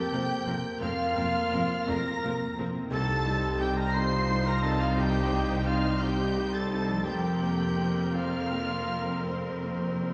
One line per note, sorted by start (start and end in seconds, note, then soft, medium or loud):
0.00 0.77 F2 medium
0.00 2.47 F3 medium
0.00 0.13 A#3 medium
0.00 2.51 A#3 medium
0.00 0.48 C4 medium
0.00 0.13 F4 medium
0.00 0.53 G4 loud
0.00 0.12 A#4 loud
0.00 0.55 G5 loud
0.00 0.81 G5 loud
0.00 0.81 G6 loud
0.12 0.20 F1 medium
0.12 0.21 F2 medium
0.12 0.43 A#3 medium
0.12 0.21 C4 medium
0.12 0.44 F4 medium
0.12 0.21 A#4 medium
0.12 0.47 C5 medium
0.46 0.54 F1 medium
0.46 0.55 F2 medium
0.46 0.55 C4 medium
0.46 0.78 C4 medium
0.46 0.78 F4 medium
0.46 0.55 A#4 medium
0.46 0.80 A#4 loud
0.79 0.89 F1 loud
0.79 0.89 F2 medium
0.79 2.89 F2 loud
0.79 0.90 C4 medium
0.79 1.90 F4 loud
0.79 2.76 A#4 loud
0.79 0.90 A#4 medium
0.79 1.86 F5 loud
0.79 1.86 F6 loud
1.16 1.25 F1 medium
1.16 1.24 F2 medium
1.16 1.49 A#3 medium
1.16 1.24 C4 medium
1.16 1.49 F4 medium
1.16 1.24 A#4 medium
1.52 1.61 F1 medium
1.52 1.61 F2 medium
1.52 1.85 C4 medium
1.52 1.61 C4 medium
1.52 1.85 F4 medium
1.52 1.61 A#4 medium
1.87 1.98 F1 medium
1.87 1.96 F2 loud
1.87 2.20 C4 medium
1.87 1.97 C4 medium
1.87 2.20 F4 medium
1.87 2.58 A#4 loud
1.87 1.97 A#4 medium
1.87 2.58 A#5 loud
1.87 2.59 A#5 loud
1.87 2.58 A#6 loud
2.24 2.33 F1 medium
2.24 2.32 F2 medium
2.24 2.55 A#3 medium
2.24 2.33 C4 medium
2.24 2.55 F4 medium
2.24 2.33 A#4 medium
2.58 2.67 F1 medium
2.58 2.67 F2 medium
2.58 2.89 C4 medium
2.58 2.67 C4 medium
2.58 2.89 F4 medium
2.58 2.67 A#4 medium
2.75 6.65 C3 medium
2.79 6.69 C4 medium
2.84 6.74 D#4 medium
2.88 4.93 C2 loud
2.88 6.78 C5 medium
2.88 3.56 A5 loud
2.92 7.02 C2 loud
2.92 7.03 C2 loud
2.92 7.03 D#4 medium
2.92 3.93 G4 loud
2.92 3.56 A4 loud
2.92 3.62 A4 loud
2.92 7.03 C5 medium
2.92 3.57 A5 loud
2.92 3.57 A6 loud
3.25 3.56 G3 medium
3.25 3.57 D#4 medium
3.59 3.91 C4 medium
3.59 3.91 D#4 medium
3.59 3.79 G4 medium
3.59 3.79 G4 loud
3.59 3.77 G5 medium
3.59 3.78 G5 loud
3.59 3.78 G6 loud
3.77 3.96 A#4 loud
3.77 3.95 A#4 loud
3.77 3.94 A#5 loud
3.77 3.95 A#5 loud
3.77 3.95 A#6 loud
3.94 4.26 C4 medium
3.94 4.26 D#4 medium
3.94 4.96 F4 loud
3.94 4.48 C5 loud
3.94 4.49 C5 loud
3.94 4.46 C6 loud
3.94 4.47 C6 loud
3.94 4.46 C7 loud
4.29 4.60 G3 medium
4.29 4.60 D#4 medium
4.44 4.65 A#4 loud
4.44 4.66 A#4 loud
4.44 4.62 A#5 loud
4.44 4.64 A#5 loud
4.44 4.63 A#6 loud
4.62 4.94 C4 medium
4.62 4.95 D#4 medium
4.62 4.83 A4 loud
4.62 4.80 A5 loud
4.62 4.82 A5 loud
4.62 4.80 A6 loud
4.80 4.97 F4 loud
4.80 4.98 F4 loud
4.80 4.97 F5 loud
4.80 4.98 F5 loud
4.80 4.98 F6 loud
4.96 7.02 C2 medium
4.96 6.02 D#4 loud
4.96 5.69 G4 loud
4.96 5.68 G4 loud
4.96 5.66 G5 loud
4.96 5.68 G5 loud
4.96 5.65 G6 loud
5.32 5.63 G3 medium
5.32 5.64 D#4 medium
5.66 5.98 C4 medium
5.66 5.99 D#4 medium
5.66 6.04 F4 loud
5.66 6.03 F4 loud
5.66 6.01 F5 medium
5.66 6.02 F5 loud
5.66 6.01 F6 loud
6.00 6.33 C4 medium
6.00 6.33 D#4 medium
6.00 6.55 G4 loud
6.00 7.06 G4 loud
6.00 6.56 G4 loud
6.00 6.53 G5 loud
6.00 6.55 G5 medium
6.00 6.53 G6 loud
6.37 6.68 G3 medium
6.37 6.69 D#4 medium
6.54 6.70 A4 medium
6.54 6.71 A4 medium
6.54 6.68 A5 loud
6.54 6.71 A5 loud
6.54 6.70 A6 loud
6.70 7.03 C4 medium
6.70 7.03 D#4 medium
6.70 7.06 A4 loud
6.70 7.09 A4 loud
6.70 7.05 A5 loud
6.70 7.06 A5 loud
6.70 7.06 A6 loud
6.88 10.14 F3 medium
6.93 10.14 A#3 medium
6.97 10.14 F4 medium
7.02 9.21 F2 medium
7.02 8.16 G4 medium
7.02 7.41 A#4 medium
7.02 10.14 C5 medium
7.02 8.14 G5 medium
7.06 10.14 F1 medium
7.06 10.14 F2 loud
7.06 10.14 C4 medium
7.06 8.17 G4 medium
7.06 10.14 A#4 medium
7.06 8.15 G5 medium
7.06 8.15 G6 loud
7.41 7.74 A#3 medium
7.41 7.74 F4 medium
7.41 7.78 A#4 medium
7.77 8.10 C4 medium
7.77 8.11 F4 medium
7.77 8.15 A#4 medium
8.13 8.47 C4 soft
8.13 8.47 F4 medium
8.13 9.07 F4 medium
8.13 9.28 F4 medium
8.13 8.50 C5 medium
8.13 9.25 F5 medium
8.13 9.26 F5 medium
8.13 9.26 F6 loud
8.51 8.84 A#3 soft
8.51 8.84 F4 soft
8.51 8.89 A#4 medium
8.87 9.22 C4 soft
8.87 9.22 F4 medium
8.87 9.27 A#4 medium
9.24 10.14 F2 medium
9.24 10.14 C4 medium
9.24 10.14 C5 medium
9.24 10.14 C6 medium
9.29 10.14 C5 medium
9.63 9.98 A#3 soft
9.63 9.98 F4 soft
10.01 10.14 C4 soft
10.01 10.14 F4 soft